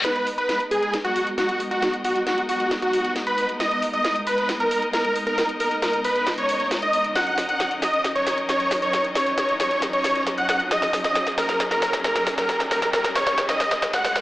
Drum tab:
HH |xxoxxxoxxxoxxxox|xxoxxxoxxxoxxxox|xxoxxxoxxxoxxxox|xxoxxxoxxxoxxxox|
SD |o---o---o---o---|o---o---o---o---|o---o---o---o---|o---o---o---o---|

HH |xxoxxxoxxxoxxxox|xxoxxxoxxxoxxxox|xxoxxxoxxxoxxxox|xxoxxxoxxxoxxxox|
SD |o-o-o-o-o-o-o-o-|o-o-o-o-o-o-o-o-|oooooooooooooooo|oooooooooooooooo|